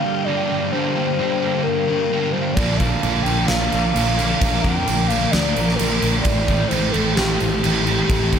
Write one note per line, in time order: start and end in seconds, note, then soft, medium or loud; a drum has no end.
0.00 0.25 G2 medium
0.00 0.27 G3 medium
0.00 0.28 G3 medium
0.00 0.28 A#3 medium
0.00 0.29 D4 medium
0.00 2.53 G4 medium
0.00 0.26 F5 loud
0.00 2.53 F5 medium
0.00 2.53 G5 medium
0.04 0.27 D3 medium
0.24 0.70 G2 medium
0.24 0.72 D3 medium
0.24 0.51 G3 medium
0.24 0.73 D5 loud
0.29 0.50 A#3 medium
0.29 0.48 D4 medium
0.49 0.72 D3 medium
0.49 0.72 G3 medium
0.49 0.74 A#3 medium
0.49 0.75 D4 medium
0.71 1.18 G2 medium
0.71 1.18 D3 medium
0.71 0.97 G3 medium
0.71 0.97 A#3 medium
0.71 0.95 D4 loud
0.71 1.63 C5 loud
0.95 1.18 D3 medium
0.95 1.19 G3 medium
0.95 1.21 A#3 medium
0.95 1.22 D4 medium
1.18 2.09 G2 medium
1.18 1.65 D3 medium
1.18 1.44 G3 medium
1.18 1.43 A#3 medium
1.22 1.42 D4 medium
1.42 2.12 G3 soft
1.42 2.13 A#3 medium
1.42 2.14 D4 medium
1.63 2.33 A#4 loud
1.87 2.10 D3 medium
1.87 2.12 G3 medium
2.11 2.56 G2 medium
2.11 2.57 D3 medium
2.11 2.36 G3 medium
2.11 2.35 A#3 medium
2.11 2.33 D4 medium
2.32 2.60 D4 medium
2.32 2.55 C5 medium
2.36 2.56 D3 medium
2.36 2.57 G3 medium
2.36 2.60 A#3 medium
2.54 2.94 A#1 medium
2.54 3.94 A#2 medium
2.54 2.78 D5 loud
2.54 kick loud
2.54 crash medium
2.58 3.02 D3 medium
2.58 2.83 F3 medium
2.58 2.81 A#3 medium
2.58 2.80 D4 medium
2.58 6.23 A#4 medium
2.58 4.41 A5 medium
2.58 6.24 D6 medium
2.77 3.06 D4 medium
2.77 3.22 F5 loud
2.77 kick medium
2.77 crash medium
2.82 3.04 F3 medium
2.82 3.05 A#3 medium
3.02 3.22 A#1 medium
3.02 3.94 A#2 medium
3.02 3.50 D3 medium
3.02 3.29 F3 medium
3.02 3.27 A#3 medium
3.02 crash medium
3.06 3.25 D4 medium
3.23 3.45 A#1 medium
3.23 3.97 D4 medium
3.23 3.48 G5 medium
3.23 crash medium
3.28 3.95 F3 medium
3.28 3.96 A#3 medium
3.46 3.68 A#1 medium
3.46 3.91 F5 loud
3.46 snare loud
3.46 crash medium
3.72 3.92 A#1 medium
3.72 3.95 F3 medium
3.72 3.96 A#3 medium
3.72 crash medium
3.91 4.39 A#2 medium
3.91 4.35 F5 loud
3.96 4.33 A#1 medium
3.96 4.40 D3 medium
3.96 4.20 F3 medium
3.96 4.18 A#3 loud
3.96 4.16 D4 medium
3.96 crash medium
4.17 4.41 F3 medium
4.17 4.42 A#3 medium
4.17 4.42 D4 medium
4.17 crash medium
4.36 4.64 F5 loud
4.36 8.39 G5 medium
4.40 4.60 A#1 medium
4.40 4.87 A#2 medium
4.40 4.85 D3 medium
4.40 4.66 F3 medium
4.40 4.65 A#3 medium
4.40 4.63 D4 medium
4.40 kick loud
4.40 crash medium
4.62 4.83 F2 medium
4.62 4.88 A#3 medium
4.62 4.88 D4 medium
4.62 5.09 G5 loud
4.62 kick medium
4.62 crash medium
4.67 4.86 F3 medium
4.86 5.26 A#1 medium
4.86 5.77 A#2 loud
4.86 5.33 D3 medium
4.86 5.12 F3 medium
4.86 5.10 A#3 medium
4.86 5.08 D4 medium
4.86 crash medium
5.07 5.81 D4 medium
5.07 5.32 F5 medium
5.07 crash medium
5.12 5.79 F3 medium
5.12 5.80 A#3 medium
5.31 5.53 D2 medium
5.31 5.77 D5 loud
5.31 snare loud
5.31 crash medium
5.55 5.76 A#1 medium
5.55 5.79 F3 medium
5.55 5.81 A#3 medium
5.55 crash medium
5.69 snare soft
5.75 6.24 A#2 medium
5.75 6.12 A#4 medium
5.75 crash medium
5.80 5.99 A#1 medium
5.80 6.25 D3 medium
5.80 6.03 F3 medium
5.80 6.02 A#3 medium
5.80 6.01 D4 medium
6.02 6.21 A#1 medium
6.02 6.25 F3 medium
6.02 6.25 A#3 medium
6.02 6.24 D4 medium
6.02 crash medium
6.22 6.63 A1 medium
6.22 7.62 A2 medium
6.22 6.69 E3 medium
6.22 6.69 D5 loud
6.22 8.39 C6 medium
6.22 kick loud
6.22 crash medium
6.26 6.50 A3 medium
6.26 6.49 C4 medium
6.26 6.46 E4 loud
6.26 8.39 A4 medium
6.47 6.71 E3 medium
6.47 6.71 A3 medium
6.47 6.72 C4 medium
6.47 6.72 E4 medium
6.47 kick medium
6.47 crash medium
6.68 7.62 A2 medium
6.68 7.17 E3 medium
6.68 6.97 A3 medium
6.68 6.93 C5 medium
6.68 crash medium
6.72 6.91 A1 medium
6.72 6.95 C4 medium
6.72 6.93 E4 medium
6.91 7.64 E4 medium
6.91 7.16 A4 medium
6.91 crash medium
6.95 7.14 A1 medium
6.95 7.63 A3 medium
6.95 7.64 C4 medium
7.14 8.39 G4 medium
7.14 snare loud
7.14 crash medium
7.18 7.37 A1 medium
7.40 7.60 A1 medium
7.40 7.64 E3 medium
7.40 7.65 A3 medium
7.40 crash soft
7.62 8.02 A1 medium
7.62 8.08 A2 medium
7.62 8.09 E3 medium
7.62 7.88 A3 medium
7.62 7.86 C4 medium
7.62 7.84 E4 loud
7.62 crash medium
7.85 8.09 E3 medium
7.85 8.10 A3 medium
7.85 8.11 C4 medium
7.85 8.11 E4 medium
7.85 crash medium
8.09 8.28 A1 medium
8.09 8.39 A2 medium
8.09 8.39 E3 medium
8.09 8.34 A3 medium
8.09 8.33 C4 medium
8.09 8.31 E4 medium
8.09 kick loud
8.09 crash medium
8.32 8.39 D#2 medium
8.32 8.39 E3 medium
8.32 8.39 A3 medium
8.32 8.39 C4 medium
8.32 8.39 E4 medium
8.32 kick medium
8.32 crash medium